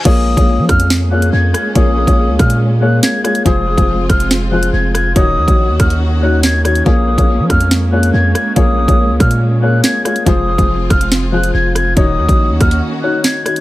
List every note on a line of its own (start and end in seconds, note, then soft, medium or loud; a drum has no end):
0.05 0.36 A#1 loud
0.05 5.12 G#3 medium
0.05 0.31 A#3 loud
0.05 3.42 A#3 medium
0.05 3.42 C#4 medium
0.05 0.31 F4 medium
0.05 0.31 G#4 medium
0.05 0.31 C#5 loud
0.05 0.65 D#6 loud
0.05 kick loud
0.05 closed hi-hat medium
0.05 crash loud
0.37 0.60 A#1 loud
0.37 0.97 A#3 medium
0.37 0.97 F4 medium
0.37 0.98 G#4 medium
0.37 0.98 C#5 medium
0.37 kick medium
0.37 closed hi-hat medium
0.58 0.69 F3 loud
0.69 1.30 F2 loud
0.69 0.88 F6 medium
0.69 kick loud
0.69 cross-stick medium
0.69 closed hi-hat medium
0.80 closed hi-hat medium
0.90 snare loud
1.11 1.63 A#3 medium
1.11 1.63 F4 medium
1.11 1.63 G#4 medium
1.11 1.64 C#5 medium
1.11 1.30 F#6 medium
1.22 closed hi-hat medium
1.33 1.53 F2 loud
1.33 1.51 G#6 medium
1.54 1.73 G#6 medium
1.54 cross-stick loud
1.54 closed hi-hat medium
1.75 2.06 A#1 loud
1.75 2.01 A#3 loud
1.75 2.01 F4 medium
1.75 2.01 G#4 medium
1.75 2.02 C#5 loud
1.75 2.36 D#6 loud
1.75 kick loud
1.75 closed hi-hat medium
2.07 2.30 A#1 loud
2.07 2.67 A#3 medium
2.07 2.67 F4 medium
2.07 2.68 G#4 medium
2.07 2.68 C#5 medium
2.07 kick medium
2.07 closed hi-hat medium
2.29 2.39 C#2 loud
2.39 3.01 A#2 loud
2.39 2.58 F6 medium
2.39 kick loud
2.39 cross-stick medium
2.39 closed hi-hat medium
2.50 closed hi-hat medium
2.81 3.16 A#3 medium
2.81 3.16 F4 medium
2.81 3.16 G#4 medium
2.81 3.17 C#5 medium
2.81 3.00 F#6 medium
3.03 3.22 G#6 medium
3.03 snare loud
3.03 closed hi-hat medium
3.24 3.41 A#3 medium
3.24 3.41 F4 medium
3.24 3.42 G#4 medium
3.24 3.42 C#5 medium
3.24 3.43 G#6 medium
3.24 cross-stick loud
3.24 closed hi-hat medium
3.35 closed hi-hat medium
3.45 3.76 F1 loud
3.45 3.71 F3 loud
3.45 5.14 C4 medium
3.45 3.71 F4 medium
3.45 5.14 F4 medium
3.45 3.72 G#4 medium
3.45 3.72 C5 loud
3.45 4.06 D#6 loud
3.45 kick loud
3.45 closed hi-hat medium
3.77 4.08 F1 loud
3.77 4.37 F3 medium
3.77 4.38 F4 medium
3.77 4.38 G#4 medium
3.77 4.38 C5 medium
3.77 kick medium
3.77 closed hi-hat medium
4.09 4.71 F1 loud
4.09 4.28 F6 medium
4.09 kick loud
4.09 cross-stick medium
4.09 closed hi-hat medium
4.20 closed hi-hat medium
4.31 snare loud
4.51 5.03 F3 medium
4.51 5.04 F4 medium
4.51 5.04 G#4 medium
4.51 5.04 C5 medium
4.51 4.71 F#6 medium
4.63 closed hi-hat medium
4.73 5.14 F1 loud
4.73 4.92 G#6 medium
4.95 5.13 G#6 medium
4.95 cross-stick loud
4.95 closed hi-hat medium
5.15 5.39 D#1 loud
5.15 5.41 D#3 loud
5.15 6.84 D#3 medium
5.15 10.23 A#3 medium
5.15 10.23 C#4 medium
5.15 5.42 D#4 loud
5.15 6.84 F#4 medium
5.15 5.42 F#4 medium
5.15 5.42 C#5 loud
5.15 5.76 D#6 loud
5.15 kick loud
5.15 closed hi-hat medium
5.37 5.47 D#2 loud
5.47 5.71 A#1 loud
5.47 6.08 D#3 medium
5.47 6.08 D#4 medium
5.47 6.08 F#4 medium
5.47 6.08 C#5 medium
5.47 kick medium
5.47 closed hi-hat medium
5.69 5.79 D#2 loud
5.80 6.82 D#2 loud
5.80 5.98 F6 medium
5.80 kick loud
5.80 cross-stick medium
5.80 closed hi-hat medium
5.90 closed hi-hat soft
6.22 6.56 D#3 medium
6.22 6.57 D#4 medium
6.22 6.57 F#4 medium
6.22 6.57 C#5 medium
6.22 6.41 F#6 medium
6.43 6.62 G#6 medium
6.43 snare loud
6.43 closed hi-hat medium
6.64 6.82 D#3 medium
6.64 6.82 D#4 medium
6.64 6.82 F#4 medium
6.64 6.82 C#5 medium
6.64 6.83 G#6 medium
6.64 cross-stick loud
6.64 closed hi-hat medium
6.75 closed hi-hat medium
6.85 7.17 A#1 loud
6.85 11.93 G#3 medium
6.85 7.12 A#3 loud
6.85 7.12 F4 medium
6.85 7.12 G#4 medium
6.85 7.12 C#5 loud
6.85 7.46 D#6 loud
6.85 kick loud
6.85 closed hi-hat soft
7.17 7.41 A#1 loud
7.17 7.78 A#3 medium
7.17 7.78 F4 medium
7.17 7.78 G#4 medium
7.17 7.79 C#5 medium
7.17 kick medium
7.17 closed hi-hat medium
7.39 7.49 F3 loud
7.50 8.11 F2 loud
7.50 7.69 F6 medium
7.50 kick loud
7.50 cross-stick medium
7.50 closed hi-hat medium
7.61 closed hi-hat medium
7.71 snare loud
7.92 8.44 A#3 medium
7.92 8.44 F4 medium
7.92 8.44 G#4 medium
7.92 8.44 C#5 medium
7.92 8.11 F#6 medium
8.03 closed hi-hat medium
8.14 8.34 F2 loud
8.14 8.32 G#6 medium
8.35 8.54 G#6 medium
8.35 cross-stick loud
8.35 closed hi-hat medium
8.56 8.87 A#1 loud
8.56 8.82 A#3 loud
8.56 8.82 F4 medium
8.56 8.82 G#4 medium
8.56 8.82 C#5 loud
8.56 9.16 D#6 loud
8.56 kick loud
8.56 closed hi-hat medium
8.88 9.11 A#1 loud
8.88 9.48 A#3 medium
8.88 9.48 F4 medium
8.88 9.49 G#4 medium
8.88 9.49 C#5 medium
8.88 kick medium
8.88 closed hi-hat medium
9.09 9.20 C#2 loud
9.20 9.81 A#2 loud
9.20 9.39 F6 medium
9.20 kick loud
9.20 cross-stick medium
9.20 closed hi-hat medium
9.31 closed hi-hat medium
9.62 9.97 A#3 medium
9.62 9.97 F4 medium
9.62 9.97 G#4 medium
9.62 9.97 C#5 medium
9.62 9.81 F#6 medium
9.84 10.03 G#6 medium
9.84 snare loud
9.84 closed hi-hat medium
10.05 10.22 A#3 medium
10.05 10.22 F4 medium
10.05 10.23 G#4 medium
10.05 10.23 C#5 medium
10.05 10.24 G#6 medium
10.05 cross-stick loud
10.05 closed hi-hat medium
10.16 closed hi-hat medium
10.26 10.57 F1 loud
10.26 10.52 F3 loud
10.26 11.95 C4 medium
10.26 10.52 F4 medium
10.26 11.95 F4 medium
10.26 10.52 G#4 medium
10.26 10.53 C5 loud
10.26 10.87 D#6 loud
10.26 kick loud
10.26 closed hi-hat medium
10.58 10.89 F1 loud
10.58 11.18 F3 medium
10.58 11.19 F4 medium
10.58 11.19 G#4 medium
10.58 11.19 C5 medium
10.58 kick medium
10.58 closed hi-hat medium
10.90 11.52 F1 loud
10.90 11.09 F6 medium
10.90 kick loud
10.90 cross-stick medium
10.90 closed hi-hat medium
11.01 closed hi-hat medium
11.12 snare loud
11.32 11.84 F3 medium
11.32 11.84 F4 medium
11.32 11.85 G#4 medium
11.32 11.85 C5 medium
11.32 11.52 F#6 medium
11.44 closed hi-hat medium
11.54 11.95 F1 loud
11.54 11.73 G#6 medium
11.75 11.94 G#6 medium
11.75 cross-stick loud
11.75 closed hi-hat medium
11.96 12.19 D#1 loud
11.96 12.22 D#3 loud
11.96 13.61 D#3 medium
11.96 13.61 A#3 medium
11.96 13.61 C#4 medium
11.96 12.22 D#4 loud
11.96 13.61 F#4 medium
11.96 12.23 F#4 medium
11.96 12.23 C#5 loud
11.96 12.57 D#6 loud
11.96 kick loud
11.96 closed hi-hat medium
12.18 12.28 D#2 loud
12.28 12.51 A#1 loud
12.28 12.88 D#3 medium
12.28 12.89 D#4 medium
12.28 12.89 F#4 medium
12.28 12.89 C#5 medium
12.28 kick medium
12.28 closed hi-hat medium
12.50 12.60 D#2 loud
12.60 12.81 D#2 loud
12.60 12.79 F6 medium
12.60 kick loud
12.60 cross-stick medium
12.60 closed hi-hat medium
12.71 closed hi-hat soft
13.02 13.37 D#3 medium
13.02 13.37 D#4 medium
13.02 13.38 F#4 medium
13.02 13.38 C#5 medium
13.02 13.22 F#6 medium
13.24 13.43 G#6 medium
13.24 snare loud
13.24 closed hi-hat medium
13.45 13.61 D#3 medium
13.45 13.61 D#4 medium
13.45 13.61 F#4 medium
13.45 13.61 C#5 medium
13.45 13.61 G#6 medium
13.45 cross-stick loud
13.45 closed hi-hat medium
13.56 closed hi-hat medium